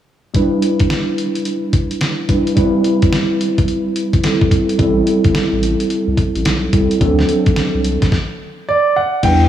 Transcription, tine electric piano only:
0, 0, Header, 1, 2, 480
1, 0, Start_track
1, 0, Key_signature, 1, "minor"
1, 0, Tempo, 555556
1, 299, Time_signature, 4, 2, 24, 8
1, 8196, End_track
2, 0, Start_track
2, 0, Title_t, "Tine electric piano"
2, 0, Program_c, 0, 4
2, 291, Note_on_c, 0, 55, 72
2, 298, Note_on_c, 0, 62, 60
2, 303, Note_on_c, 0, 64, 59
2, 313, Note_on_c, 0, 71, 81
2, 478, Control_c, 0, 64, 127
2, 1942, Note_off_c, 0, 55, 0
2, 1945, Note_off_c, 0, 62, 0
2, 1948, Note_off_c, 0, 64, 0
2, 1952, Note_off_c, 0, 71, 0
2, 1975, Note_on_c, 0, 55, 58
2, 1978, Note_on_c, 0, 62, 54
2, 1982, Note_on_c, 0, 64, 52
2, 1984, Note_on_c, 0, 71, 62
2, 2198, Note_off_c, 0, 55, 0
2, 2208, Note_on_c, 0, 55, 72
2, 2210, Note_off_c, 0, 64, 0
2, 2214, Note_on_c, 0, 60, 60
2, 2217, Note_off_c, 0, 71, 0
2, 2219, Note_off_c, 0, 62, 0
2, 2220, Note_on_c, 0, 64, 65
2, 2227, Note_on_c, 0, 71, 76
2, 2232, Control_c, 0, 64, 0
2, 2394, Control_c, 0, 64, 127
2, 3625, Note_off_c, 0, 55, 0
2, 3628, Note_off_c, 0, 60, 0
2, 3631, Note_off_c, 0, 64, 0
2, 3635, Note_off_c, 0, 71, 0
2, 3658, Note_on_c, 0, 55, 50
2, 3660, Note_on_c, 0, 60, 50
2, 3664, Note_on_c, 0, 64, 54
2, 3667, Note_on_c, 0, 69, 60
2, 4121, Note_off_c, 0, 55, 0
2, 4126, Note_off_c, 0, 60, 0
2, 4131, Note_on_c, 0, 55, 73
2, 4134, Note_off_c, 0, 64, 0
2, 4137, Note_on_c, 0, 60, 66
2, 4143, Note_off_c, 0, 69, 0
2, 4145, Note_on_c, 0, 64, 65
2, 4151, Control_c, 0, 64, 0
2, 4153, Note_on_c, 0, 69, 76
2, 4304, Control_c, 0, 64, 127
2, 5781, Note_off_c, 0, 55, 0
2, 5784, Note_off_c, 0, 60, 0
2, 5789, Note_off_c, 0, 64, 0
2, 5793, Note_off_c, 0, 69, 0
2, 5815, Note_on_c, 0, 55, 57
2, 5819, Note_on_c, 0, 60, 50
2, 5822, Note_on_c, 0, 64, 53
2, 5826, Note_on_c, 0, 69, 59
2, 6046, Note_off_c, 0, 60, 0
2, 6051, Note_on_c, 0, 54, 71
2, 6056, Note_on_c, 0, 60, 72
2, 6057, Note_off_c, 0, 55, 0
2, 6060, Note_off_c, 0, 64, 0
2, 6060, Note_off_c, 0, 69, 0
2, 6062, Note_on_c, 0, 62, 61
2, 6070, Note_on_c, 0, 69, 82
2, 6072, Control_c, 0, 64, 0
2, 6218, Control_c, 0, 64, 127
2, 6996, Note_off_c, 0, 54, 0
2, 6998, Note_off_c, 0, 60, 0
2, 7002, Note_off_c, 0, 62, 0
2, 7006, Note_off_c, 0, 69, 0
2, 7030, Control_c, 0, 64, 0
2, 7973, Note_on_c, 0, 55, 72
2, 7978, Note_on_c, 0, 62, 63
2, 7982, Note_on_c, 0, 64, 64
2, 7986, Note_on_c, 0, 71, 75
2, 8123, Control_c, 0, 64, 127
2, 8196, Note_off_c, 0, 55, 0
2, 8196, Note_off_c, 0, 62, 0
2, 8196, Note_off_c, 0, 64, 0
2, 8196, Note_off_c, 0, 71, 0
2, 8196, End_track
0, 0, End_of_file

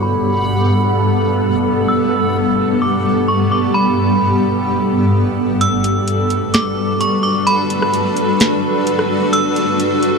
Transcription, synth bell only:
0, 0, Header, 1, 2, 480
1, 0, Start_track
1, 0, Key_signature, 1, "major"
1, 0, Tempo, 465116
1, 29, Time_signature, 4, 2, 24, 8
1, 10510, End_track
2, 0, Start_track
2, 0, Title_t, "Synth bell"
2, 0, Program_c, 0, 98
2, 25, Note_on_c, 0, 83, 97
2, 1906, Note_off_c, 0, 83, 0
2, 1944, Note_on_c, 0, 88, 100
2, 2865, Note_off_c, 0, 88, 0
2, 2907, Note_on_c, 0, 86, 74
2, 3359, Note_off_c, 0, 86, 0
2, 3388, Note_on_c, 0, 85, 72
2, 3616, Note_off_c, 0, 85, 0
2, 3629, Note_on_c, 0, 86, 65
2, 3857, Note_off_c, 0, 86, 0
2, 3863, Note_on_c, 0, 83, 101
2, 5265, Note_off_c, 0, 83, 0
2, 5790, Note_on_c, 0, 88, 90
2, 6708, Note_off_c, 0, 88, 0
2, 6748, Note_on_c, 0, 86, 81
2, 7199, Note_off_c, 0, 86, 0
2, 7231, Note_on_c, 0, 85, 80
2, 7458, Note_off_c, 0, 85, 0
2, 7461, Note_on_c, 0, 86, 80
2, 7693, Note_off_c, 0, 86, 0
2, 7706, Note_on_c, 0, 83, 104
2, 9586, Note_off_c, 0, 83, 0
2, 9627, Note_on_c, 0, 88, 105
2, 10510, Note_off_c, 0, 88, 0
2, 10510, End_track
0, 0, End_of_file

